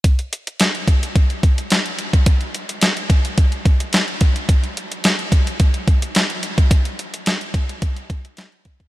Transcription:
\new DrumStaff \with { instrumentName = "Drums" } \drummode { \time 4/4 \tempo 4 = 108 <hh bd>16 hh16 hh16 hh16 <hc hh sn>16 hh16 <hh bd>16 hh16 <hh bd>16 hh16 <hh bd>16 hh16 <hc hh sn>16 hh16 hh16 <hh bd>16 | <hh bd>16 hh16 hh16 hh16 <hc hh sn>16 hh16 <hh bd>16 hh16 <hh bd>16 hh16 <hh bd>16 hh16 <hc hh sn>16 hh16 <hh bd>16 hh16 | <hh bd>16 hh16 hh16 hh16 <hc hh sn>16 hh16 <hh bd>16 hh16 <hh bd>16 hh16 <hh bd>16 hh16 <hc hh sn>16 hh16 hh16 <hh bd>16 | <hh bd>16 hh16 hh16 hh16 <hc hh sn>16 hh16 <hh bd>16 hh16 <hh bd>16 hh16 <hh bd>16 hh16 <hc hh sn>16 hh16 <hh bd>16 <hh bd>16 | }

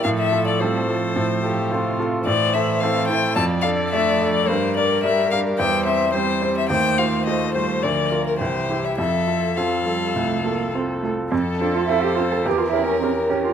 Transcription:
<<
  \new Staff \with { instrumentName = "Violin" } { \time 4/4 \key f \major \tempo 4 = 107 f''16 e''8 d''16 c''2~ c''8 r8 | d''8 e''8 f''8 g''8 a''8 f''8 e''8. d''16 | c''8 d''8 e''8 f''8 g''8 e''8 c''8. e''16 | g''8 f''8 ees''8 c''8 d''8. bes'16 c''8. e''16 |
e''4 f''2 r4 | a'4 c''4 bes'2 | }
  \new Staff \with { instrumentName = "Violin" } { \time 4/4 \key f \major a'2 a'8 g'8 f'4 | c''2 d''2 | bes'2 c''4 c''4 | c''4 c''4 bes'4 g'4 |
a'4 a'2~ a'8 r8 | a'2 bes'2 | }
  \new Staff \with { instrumentName = "Grand piano" } { \time 4/4 \key f \major a,8 <f' a'>8 <c' f' a'>8 <f' a'>8 a,8 <f' a'>8 <c' f' a'>8 <f' a'>8 | a,8 <e' a'>8 <c' e' a'>8 <e' a'>8 f,8 <d' a'>8 <a d' a'>8 <d' a'>8 | g,8 <d' bes'>8 <g d' bes'>8 <d' bes'>8 e,8 <c' c''>8 <g c' c''>8 <c' c''>8 | ees,8 <f' c''>8 <a f' c''>8 <f' c''>8 d,8 <f' bes'>8 c,8 <e' g'>8 |
f,8 <f' a'>8 <c' f' a'>8 <f' a'>8 c,8 <f' a'>8 <c' f' a'>8 <f' a'>8 | f,8 <c' f' a'>8 <c' f' a'>8 <c' f' a'>8 e,8 <cis' g' bes'>8 <cis' g' bes'>8 <cis' g' bes'>8 | }
  \new Staff \with { instrumentName = "Cello" } { \time 4/4 \key f \major f4 g8 f4. c4 | e2 f2 | g2 g4 g4 | a4 a8 g8 f4 e4 |
f4 f8 g8 a8 bes8 c'8 a8 | c'8 d'16 f'16 e'16 g'16 f'16 a'16 g'16 f'16 e'16 cis'16 c'8 cis'16 f'16 | }
>>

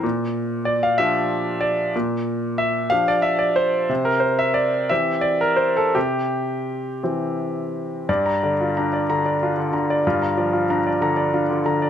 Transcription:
<<
  \new Staff \with { instrumentName = "Grand piano" } { \time 6/8 \key g \dorian \tempo 4. = 61 r4 d''16 f''16 e''4 d''8 | r4 e''8 f''16 d''16 e''16 d''16 c''8~ | c''16 bes'16 c''16 e''16 d''8 e''8 d''16 bes'16 c''16 a'16 | g'4. r4. |
d''16 bes''16 d''16 f'16 bes''16 d''16 bes''16 d''16 f'16 d16 bes''16 d''16 | f'16 bes''16 d''16 f'16 bes''16 d''16 bes''16 d''16 f'16 d16 bes''16 d''16 | }
  \new Staff \with { instrumentName = "Grand piano" } { \clef bass \time 6/8 \key g \dorian bes,4. <f d' g'>4. | bes,4. <f d' g'>4. | c4. <e c' g'>4. | c4. <e c' g'>4. |
g,8 d8 d'8 d8 d'8 d8 | g,8 f8 d'8 d8 d'8 d8 | }
>>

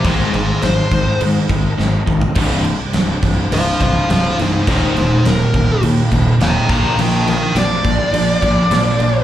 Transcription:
<<
  \new Staff \with { instrumentName = "Lead electric guitar" } { \time 4/4 \key c \minor \tempo 4 = 104 <aes' c''>8 <aes' c''>8 c''4 r2 | r2 <c'' f''>8 <c'' f''>8 <c'' f''>8 <ees' c''>8 | <ees' c''>8 <ees' c''>8 bes'4 r4 <g'' bes''>8 <g'' bes''>8 | <bes' g''>8 <bes' g''>8 d''2. | }
  \new Staff \with { instrumentName = "Tonewheel organ" } { \time 4/4 \key c \minor << { <aes bes'>1 | <c' d''>1 | <ees' bes'>2.~ <ees' bes'>8 <bes c''>8~ | <bes c''>1 | } \\ { ees'1 | g'1~ | g'2.~ g'8 f'8~ | f'1 | } >> }
  \new Staff \with { instrumentName = "Overdriven electric guitar" } { \clef bass \time 4/4 \key c \minor <aes, ees aes>8 <aes, ees>8 <aes, ees>8 <aes, ees>8 <aes, ees>8 <aes, ees>8 <aes, ees>8 <aes, ees>8 | <c, g, c>8 <c, g,>8 <c, g,>8 <c, g,>8 <c, g,>8 <c, g,>8 <c, g,>8 <c, g,>8 | <ees, bes, ees>8 <ees, bes,>8 <ees, bes,>8 <ees, bes,>8 <ees, bes,>8 <ees, bes,>8 <ees, bes,>8 <bes, f bes>8 | <bes, f>8 <bes, f>8 <bes, f>8 <bes, f>8 <bes, f>8 <bes, f>8 <bes, f>8 <bes, f>8 | }
  \new Staff \with { instrumentName = "Overdriven electric guitar" } { \clef bass \time 4/4 \key c \minor <aes, ees aes>8 <aes, ees>8 <aes, ees>8 <aes, ees>8 <aes, ees>8 <aes, ees>8 <aes, ees>8 <aes, ees>8 | <c, g, c>8 <c, g,>8 <c, g,>8 <c, g,>8 <c, g,>8 <c, g,>8 <c, g,>8 <c, g,>8 | <ees, bes, ees>8 <ees, bes,>8 <ees, bes,>8 <ees, bes,>8 <ees, bes,>8 <ees, bes,>8 <ees, bes,>8 <bes, f bes>8 | <bes, f>8 <bes, f>8 <bes, f>8 <bes, f>8 <bes, f>8 <bes, f>8 <bes, f>8 <bes, f>8 | }
  \new Staff \with { instrumentName = "Fingered electric bass" } { \clef bass \time 4/4 \key c \minor aes,,8 aes,,8 aes,,8 aes,,8 aes,8 aes,,8 aes,,8 aes,,8 | c,,4 c,,8 c,,8 c,,8 c,,8 c,,8 c,,8 | ees,,8 ees,,8 ees,,8 ees,,8 ees,8 ees,,8 ees,,8 bes,,8 | bes,,4 bes,,8 bes,,8 bes,,8 bes,,8 bes,,8 bes,,8 | }
  \new DrumStaff \with { instrumentName = "Drums" } \drummode { \time 4/4 <cymc bd>8 cymc8 <cymc sn>8 <cymc bd>8 cymc8 <cymc bd>8 sn8 bd16 tomfh16 | <cymc bd>8 cymc8 <cymc sn>8 <cymc bd>8 cymc8 <cymc bd>8 <cymc sn>8 cymc8 | <cymc bd>8 cymc8 <cymc sn>8 <cymc bd>8 cymc8 <cymc bd>8 <cymc sn>8 <cymc bd>8 | cymc8 cymc8 <cymc sn>8 <cymc bd>8 cymc8 <cymc bd>8 <cymc sn>8 cymc8 | }
>>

